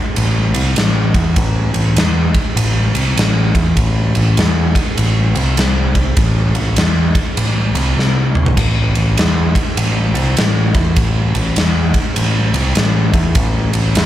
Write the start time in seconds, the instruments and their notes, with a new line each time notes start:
0.16 picked electric bass A1, ride
0.54 picked electric bass C2, ride
0.76 picked electric bass A1, snare, ride
1.14 picked electric bass E2, kick, ride
1.36 picked electric bass A1, kick, ride
1.74 picked electric bass A1, ride
1.96 picked electric bass E2, snare, ride
2.34 muted picked electric bass stroke, kick, ride
2.56 picked electric bass A1, ride
2.94 picked electric bass C2, ride
3.16 picked electric bass A1, snare, ride
3.55 picked electric bass E2, kick, ride
3.77 picked electric bass A1, kick, ride
4.15 picked electric bass A1, ride
4.37 picked electric bass E2, snare, ride
4.75 muted picked electric bass stroke, kick, ride
4.97 picked electric bass A1, ride
5.35 picked electric bass C2, ride
5.57 picked electric bass C2, snare, ride
5.95 kick, ride
6.17 picked electric bass A1, kick, ride
6.55 picked electric bass A1, ride
6.76 picked electric bass E2, snare, ride
7.15 muted picked electric bass stroke, kick, ride
7.37 picked electric bass A1, ride
7.75 picked electric bass C2, ride
7.97 picked electric bass C2, snare
8.35 mid tom
8.46 floor tom
8.57 picked electric bass A1, kick, crash, ride
8.95 picked electric bass A1, ride
9.17 picked electric bass E2, snare, ride
9.55 muted picked electric bass stroke, kick, ride
9.77 picked electric bass A1, ride
10.15 picked electric bass C2, ride
10.37 picked electric bass A1, snare, ride
10.74 picked electric bass E2, kick, ride
10.96 picked electric bass A1, kick, ride
11.34 picked electric bass A1, ride
11.56 picked electric bass E2, snare, ride
11.94 muted picked electric bass stroke, kick, ride
12.16 picked electric bass A1, ride
12.54 picked electric bass C2, ride
12.75 picked electric bass A1, snare, ride
13.13 picked electric bass E2, kick, ride
13.35 picked electric bass A1, kick, ride
13.73 picked electric bass A1, ride
13.95 picked electric bass E2, snare, ride